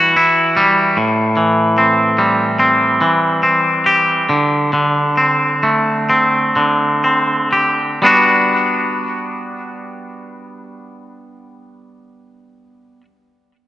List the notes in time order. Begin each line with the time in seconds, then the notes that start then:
Already playing: E3 G3 E4 F#4
0.16 E4
0.57 G3
0.97 A2
1.37 E3
1.78 C4
2.18 G3
2.59 C4
3.01 E3
3.43 C4
3.86 G4
4.29 D3
4.73 D3
5.17 C4
5.63 A3
6.10 C4
6.56 D3
7.04 C4
7.53 G4
8.02 G3 B3 D4
8.06 F#4